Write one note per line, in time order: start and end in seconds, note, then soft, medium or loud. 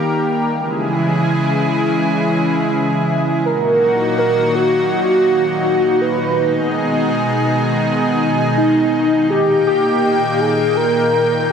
0.00 0.50 D#3 medium
0.00 0.50 G3 medium
0.00 0.50 A#3 medium
0.00 0.50 G4 medium
0.00 0.49 A#4 medium
0.52 3.42 C#3 medium
0.52 3.42 E3 medium
0.52 3.42 G#3 medium
0.52 3.42 E4 medium
0.52 3.42 G#4 medium
3.45 6.35 A#2 medium
3.45 11.52 D#3 medium
3.45 6.35 F#3 medium
3.45 11.52 D#4 medium
3.45 6.35 F#4 medium
3.45 4.14 A#4 loud
4.18 4.57 A#4 loud
4.55 4.91 F#4 medium
4.92 6.03 F#4 loud
6.01 6.74 B4 loud
6.38 9.28 B2 medium
6.38 9.28 G#3 medium
6.38 9.27 G#4 medium
8.57 9.27 D#4 medium
9.30 11.52 A#2 medium
9.30 11.52 A#3 medium
9.30 9.64 G4 loud
9.30 11.52 G5 medium
9.67 10.42 G4 loud
10.41 10.78 G#4 loud
10.77 11.52 A#4 loud